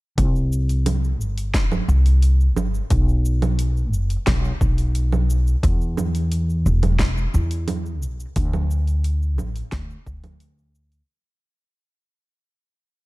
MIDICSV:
0, 0, Header, 1, 3, 480
1, 0, Start_track
1, 0, Tempo, 681818
1, 125, Time_signature, 4, 2, 24, 8
1, 9188, End_track
2, 0, Start_track
2, 0, Title_t, "Upright bass"
2, 0, Program_c, 0, 32
2, 126, Note_on_c, 0, 36, 88
2, 846, Note_off_c, 0, 36, 0
2, 846, Note_on_c, 0, 31, 81
2, 1260, Note_off_c, 0, 31, 0
2, 1326, Note_on_c, 0, 36, 83
2, 1805, Note_off_c, 0, 36, 0
2, 1805, Note_on_c, 0, 31, 91
2, 1963, Note_off_c, 0, 31, 0
2, 2047, Note_on_c, 0, 35, 89
2, 2766, Note_off_c, 0, 35, 0
2, 2766, Note_on_c, 0, 30, 91
2, 2923, Note_off_c, 0, 30, 0
2, 3007, Note_on_c, 0, 35, 98
2, 3164, Note_off_c, 0, 35, 0
2, 3246, Note_on_c, 0, 35, 90
2, 3900, Note_off_c, 0, 35, 0
2, 3966, Note_on_c, 0, 40, 92
2, 4688, Note_on_c, 0, 28, 88
2, 4699, Note_off_c, 0, 40, 0
2, 5101, Note_off_c, 0, 28, 0
2, 5168, Note_on_c, 0, 40, 86
2, 5646, Note_off_c, 0, 40, 0
2, 5646, Note_on_c, 0, 35, 97
2, 5803, Note_off_c, 0, 35, 0
2, 5887, Note_on_c, 0, 38, 93
2, 6607, Note_off_c, 0, 38, 0
2, 6607, Note_on_c, 0, 33, 90
2, 6764, Note_off_c, 0, 33, 0
2, 6847, Note_on_c, 0, 38, 101
2, 7004, Note_off_c, 0, 38, 0
2, 7087, Note_on_c, 0, 38, 92
2, 7741, Note_off_c, 0, 38, 0
2, 9188, End_track
3, 0, Start_track
3, 0, Title_t, "Drums"
3, 125, Note_on_c, 9, 36, 98
3, 125, Note_on_c, 9, 46, 63
3, 130, Note_on_c, 9, 69, 41
3, 196, Note_off_c, 9, 36, 0
3, 196, Note_off_c, 9, 46, 0
3, 200, Note_off_c, 9, 69, 0
3, 252, Note_on_c, 9, 69, 20
3, 322, Note_off_c, 9, 69, 0
3, 369, Note_on_c, 9, 69, 73
3, 439, Note_off_c, 9, 69, 0
3, 488, Note_on_c, 9, 46, 32
3, 493, Note_on_c, 9, 69, 34
3, 558, Note_off_c, 9, 46, 0
3, 563, Note_off_c, 9, 69, 0
3, 606, Note_on_c, 9, 46, 71
3, 606, Note_on_c, 9, 64, 77
3, 611, Note_on_c, 9, 69, 42
3, 676, Note_off_c, 9, 46, 0
3, 676, Note_off_c, 9, 64, 0
3, 681, Note_off_c, 9, 69, 0
3, 734, Note_on_c, 9, 69, 20
3, 805, Note_off_c, 9, 69, 0
3, 852, Note_on_c, 9, 69, 70
3, 922, Note_off_c, 9, 69, 0
3, 969, Note_on_c, 9, 46, 43
3, 973, Note_on_c, 9, 69, 30
3, 1039, Note_off_c, 9, 46, 0
3, 1044, Note_off_c, 9, 69, 0
3, 1086, Note_on_c, 9, 36, 105
3, 1087, Note_on_c, 9, 38, 72
3, 1087, Note_on_c, 9, 46, 66
3, 1092, Note_on_c, 9, 69, 43
3, 1156, Note_off_c, 9, 36, 0
3, 1158, Note_off_c, 9, 38, 0
3, 1158, Note_off_c, 9, 46, 0
3, 1162, Note_off_c, 9, 69, 0
3, 1209, Note_on_c, 9, 64, 72
3, 1213, Note_on_c, 9, 69, 20
3, 1279, Note_off_c, 9, 64, 0
3, 1284, Note_off_c, 9, 69, 0
3, 1331, Note_on_c, 9, 69, 66
3, 1401, Note_off_c, 9, 69, 0
3, 1449, Note_on_c, 9, 46, 42
3, 1453, Note_on_c, 9, 69, 29
3, 1519, Note_off_c, 9, 46, 0
3, 1524, Note_off_c, 9, 69, 0
3, 1566, Note_on_c, 9, 46, 62
3, 1571, Note_on_c, 9, 69, 40
3, 1636, Note_off_c, 9, 46, 0
3, 1641, Note_off_c, 9, 69, 0
3, 1693, Note_on_c, 9, 69, 20
3, 1763, Note_off_c, 9, 69, 0
3, 1805, Note_on_c, 9, 64, 77
3, 1810, Note_on_c, 9, 69, 77
3, 1876, Note_off_c, 9, 64, 0
3, 1880, Note_off_c, 9, 69, 0
3, 1932, Note_on_c, 9, 69, 33
3, 2002, Note_off_c, 9, 69, 0
3, 2045, Note_on_c, 9, 46, 64
3, 2046, Note_on_c, 9, 36, 117
3, 2049, Note_on_c, 9, 69, 44
3, 2115, Note_off_c, 9, 46, 0
3, 2116, Note_off_c, 9, 36, 0
3, 2120, Note_off_c, 9, 69, 0
3, 2173, Note_on_c, 9, 69, 21
3, 2243, Note_off_c, 9, 69, 0
3, 2290, Note_on_c, 9, 69, 80
3, 2360, Note_off_c, 9, 69, 0
3, 2409, Note_on_c, 9, 46, 30
3, 2409, Note_on_c, 9, 64, 75
3, 2413, Note_on_c, 9, 69, 34
3, 2479, Note_off_c, 9, 46, 0
3, 2479, Note_off_c, 9, 64, 0
3, 2484, Note_off_c, 9, 69, 0
3, 2526, Note_on_c, 9, 46, 63
3, 2530, Note_on_c, 9, 69, 47
3, 2596, Note_off_c, 9, 46, 0
3, 2601, Note_off_c, 9, 69, 0
3, 2652, Note_on_c, 9, 69, 20
3, 2723, Note_off_c, 9, 69, 0
3, 2770, Note_on_c, 9, 69, 73
3, 2840, Note_off_c, 9, 69, 0
3, 2887, Note_on_c, 9, 46, 42
3, 2892, Note_on_c, 9, 69, 31
3, 2958, Note_off_c, 9, 46, 0
3, 2962, Note_off_c, 9, 69, 0
3, 3005, Note_on_c, 9, 38, 74
3, 3005, Note_on_c, 9, 46, 65
3, 3005, Note_on_c, 9, 64, 74
3, 3006, Note_on_c, 9, 36, 119
3, 3010, Note_on_c, 9, 69, 40
3, 3076, Note_off_c, 9, 36, 0
3, 3076, Note_off_c, 9, 38, 0
3, 3076, Note_off_c, 9, 46, 0
3, 3076, Note_off_c, 9, 64, 0
3, 3080, Note_off_c, 9, 69, 0
3, 3131, Note_on_c, 9, 69, 21
3, 3201, Note_off_c, 9, 69, 0
3, 3246, Note_on_c, 9, 36, 99
3, 3248, Note_on_c, 9, 69, 74
3, 3316, Note_off_c, 9, 36, 0
3, 3318, Note_off_c, 9, 69, 0
3, 3366, Note_on_c, 9, 46, 38
3, 3370, Note_on_c, 9, 69, 31
3, 3436, Note_off_c, 9, 46, 0
3, 3441, Note_off_c, 9, 69, 0
3, 3485, Note_on_c, 9, 46, 64
3, 3490, Note_on_c, 9, 69, 40
3, 3555, Note_off_c, 9, 46, 0
3, 3560, Note_off_c, 9, 69, 0
3, 3608, Note_on_c, 9, 64, 67
3, 3613, Note_on_c, 9, 69, 21
3, 3678, Note_off_c, 9, 64, 0
3, 3683, Note_off_c, 9, 69, 0
3, 3730, Note_on_c, 9, 69, 79
3, 3801, Note_off_c, 9, 69, 0
3, 3852, Note_on_c, 9, 69, 36
3, 3923, Note_off_c, 9, 69, 0
3, 3966, Note_on_c, 9, 36, 114
3, 3967, Note_on_c, 9, 46, 60
3, 3971, Note_on_c, 9, 69, 43
3, 4036, Note_off_c, 9, 36, 0
3, 4037, Note_off_c, 9, 46, 0
3, 4042, Note_off_c, 9, 69, 0
3, 4093, Note_on_c, 9, 69, 21
3, 4163, Note_off_c, 9, 69, 0
3, 4206, Note_on_c, 9, 64, 69
3, 4210, Note_on_c, 9, 69, 79
3, 4276, Note_off_c, 9, 64, 0
3, 4281, Note_off_c, 9, 69, 0
3, 4328, Note_on_c, 9, 46, 31
3, 4332, Note_on_c, 9, 69, 38
3, 4398, Note_off_c, 9, 46, 0
3, 4403, Note_off_c, 9, 69, 0
3, 4446, Note_on_c, 9, 46, 60
3, 4451, Note_on_c, 9, 69, 48
3, 4517, Note_off_c, 9, 46, 0
3, 4521, Note_off_c, 9, 69, 0
3, 4574, Note_on_c, 9, 69, 21
3, 4644, Note_off_c, 9, 69, 0
3, 4689, Note_on_c, 9, 69, 75
3, 4760, Note_off_c, 9, 69, 0
3, 4807, Note_on_c, 9, 46, 41
3, 4807, Note_on_c, 9, 64, 75
3, 4812, Note_on_c, 9, 69, 35
3, 4878, Note_off_c, 9, 46, 0
3, 4878, Note_off_c, 9, 64, 0
3, 4882, Note_off_c, 9, 69, 0
3, 4923, Note_on_c, 9, 38, 76
3, 4923, Note_on_c, 9, 46, 61
3, 4927, Note_on_c, 9, 36, 112
3, 4928, Note_on_c, 9, 69, 43
3, 4994, Note_off_c, 9, 38, 0
3, 4994, Note_off_c, 9, 46, 0
3, 4997, Note_off_c, 9, 36, 0
3, 4998, Note_off_c, 9, 69, 0
3, 5051, Note_on_c, 9, 69, 22
3, 5122, Note_off_c, 9, 69, 0
3, 5169, Note_on_c, 9, 69, 75
3, 5239, Note_off_c, 9, 69, 0
3, 5286, Note_on_c, 9, 46, 40
3, 5291, Note_on_c, 9, 69, 32
3, 5357, Note_off_c, 9, 46, 0
3, 5361, Note_off_c, 9, 69, 0
3, 5404, Note_on_c, 9, 46, 57
3, 5404, Note_on_c, 9, 64, 64
3, 5409, Note_on_c, 9, 69, 44
3, 5475, Note_off_c, 9, 46, 0
3, 5475, Note_off_c, 9, 64, 0
3, 5479, Note_off_c, 9, 69, 0
3, 5531, Note_on_c, 9, 69, 20
3, 5602, Note_off_c, 9, 69, 0
3, 5649, Note_on_c, 9, 69, 77
3, 5719, Note_off_c, 9, 69, 0
3, 5772, Note_on_c, 9, 69, 35
3, 5842, Note_off_c, 9, 69, 0
3, 5885, Note_on_c, 9, 46, 64
3, 5887, Note_on_c, 9, 36, 105
3, 5889, Note_on_c, 9, 69, 47
3, 5955, Note_off_c, 9, 46, 0
3, 5957, Note_off_c, 9, 36, 0
3, 5960, Note_off_c, 9, 69, 0
3, 6009, Note_on_c, 9, 64, 77
3, 6013, Note_on_c, 9, 69, 23
3, 6079, Note_off_c, 9, 64, 0
3, 6083, Note_off_c, 9, 69, 0
3, 6130, Note_on_c, 9, 69, 81
3, 6200, Note_off_c, 9, 69, 0
3, 6248, Note_on_c, 9, 46, 30
3, 6252, Note_on_c, 9, 69, 36
3, 6318, Note_off_c, 9, 46, 0
3, 6322, Note_off_c, 9, 69, 0
3, 6366, Note_on_c, 9, 46, 65
3, 6371, Note_on_c, 9, 69, 45
3, 6437, Note_off_c, 9, 46, 0
3, 6441, Note_off_c, 9, 69, 0
3, 6493, Note_on_c, 9, 69, 21
3, 6564, Note_off_c, 9, 69, 0
3, 6605, Note_on_c, 9, 64, 72
3, 6609, Note_on_c, 9, 69, 79
3, 6675, Note_off_c, 9, 64, 0
3, 6680, Note_off_c, 9, 69, 0
3, 6727, Note_on_c, 9, 46, 43
3, 6732, Note_on_c, 9, 69, 34
3, 6798, Note_off_c, 9, 46, 0
3, 6802, Note_off_c, 9, 69, 0
3, 6844, Note_on_c, 9, 38, 69
3, 6844, Note_on_c, 9, 46, 64
3, 6846, Note_on_c, 9, 36, 112
3, 6848, Note_on_c, 9, 69, 40
3, 6914, Note_off_c, 9, 38, 0
3, 6914, Note_off_c, 9, 46, 0
3, 6917, Note_off_c, 9, 36, 0
3, 6919, Note_off_c, 9, 69, 0
3, 6971, Note_on_c, 9, 69, 23
3, 7042, Note_off_c, 9, 69, 0
3, 7086, Note_on_c, 9, 36, 111
3, 7088, Note_on_c, 9, 69, 79
3, 7156, Note_off_c, 9, 36, 0
3, 7158, Note_off_c, 9, 69, 0
3, 7206, Note_on_c, 9, 46, 41
3, 7206, Note_on_c, 9, 64, 74
3, 7211, Note_on_c, 9, 69, 32
3, 7276, Note_off_c, 9, 46, 0
3, 7276, Note_off_c, 9, 64, 0
3, 7281, Note_off_c, 9, 69, 0
3, 7323, Note_on_c, 9, 46, 59
3, 7328, Note_on_c, 9, 69, 42
3, 7394, Note_off_c, 9, 46, 0
3, 7398, Note_off_c, 9, 69, 0
3, 7450, Note_on_c, 9, 69, 21
3, 7521, Note_off_c, 9, 69, 0
3, 7568, Note_on_c, 9, 69, 78
3, 7638, Note_off_c, 9, 69, 0
3, 7686, Note_on_c, 9, 46, 29
3, 7691, Note_on_c, 9, 69, 35
3, 7757, Note_off_c, 9, 46, 0
3, 7761, Note_off_c, 9, 69, 0
3, 9188, End_track
0, 0, End_of_file